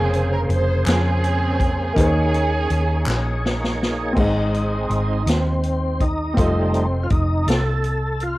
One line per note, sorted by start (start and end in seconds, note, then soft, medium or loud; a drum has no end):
0.00 0.45 F1 medium
0.00 1.92 C#3 medium
0.00 1.93 C#3 medium
0.00 1.90 A#3 medium
0.00 1.93 A#3 medium
0.00 0.47 C4 medium
0.00 0.47 C#4 medium
0.00 0.32 G#4 medium
0.00 1.93 G#4 medium
0.00 1.93 C5 medium
0.00 1.94 C5 medium
0.13 closed hi-hat soft
0.33 0.41 A#4 medium
0.49 0.83 F1 medium
0.49 0.84 C5 medium
0.49 closed hi-hat soft
0.86 1.92 F2 medium
0.86 1.93 C4 medium
0.86 1.93 C#4 medium
0.86 1.97 G#4 medium
0.86 snare loud
0.86 clap medium
0.86 closed hi-hat medium
1.24 closed hi-hat soft
1.60 kick medium
1.60 closed hi-hat soft
1.93 2.66 D#2 medium
1.93 3.03 D#3 medium
1.93 4.11 A#3 medium
1.93 4.13 A#3 medium
1.93 4.13 D#4 medium
1.93 2.03 G4 soft
1.93 4.13 C#5 medium
1.93 kick medium
1.97 3.42 C#4 medium
1.97 4.14 G#4 medium
1.97 3.42 G#4 medium
1.97 2.05 C5 medium
1.97 closed hi-hat medium
2.04 4.17 G#4 medium
2.04 4.18 C#5 medium
2.34 closed hi-hat soft
2.70 3.04 D#2 medium
2.70 closed hi-hat soft
3.06 4.13 A#1 medium
3.06 snare medium
3.06 clap loud
3.46 snare medium
3.64 snare medium
3.83 snare medium
4.13 4.86 G#1 medium
4.13 5.23 G#2 medium
4.13 5.23 G#3 soft
4.13 6.32 C4 medium
4.13 6.33 D#4 medium
4.17 5.23 C4 soft
4.17 4.91 D#4 medium
4.17 6.34 G#4 medium
4.17 6.35 D#5 medium
4.17 kick medium
4.17 crash medium
4.54 closed hi-hat soft
4.90 5.24 G#1 medium
4.90 5.29 D#4 medium
4.90 closed hi-hat soft
5.26 6.33 D#2 medium
5.26 6.04 C4 medium
5.26 snare loud
5.26 closed hi-hat medium
5.63 closed hi-hat soft
6.00 6.37 D#4 medium
6.00 kick medium
6.00 closed hi-hat soft
6.34 7.07 F1 loud
6.34 6.86 G3 medium
6.34 6.87 A3 soft
6.34 8.38 C4 medium
6.34 8.38 F4 medium
6.34 kick medium
6.34 closed hi-hat medium
6.38 7.07 C4 medium
6.38 6.87 D#4 medium
6.38 8.38 A4 medium
6.38 8.38 D#5 medium
6.74 closed hi-hat soft
7.04 7.11 F4 medium
7.10 7.45 F1 medium
7.10 7.49 D#4 medium
7.10 kick medium
7.10 closed hi-hat soft
7.47 8.38 C2 medium
7.47 8.24 A4 medium
7.47 snare loud
7.47 closed hi-hat medium
7.84 closed hi-hat soft
8.20 8.38 F4 medium
8.20 closed hi-hat soft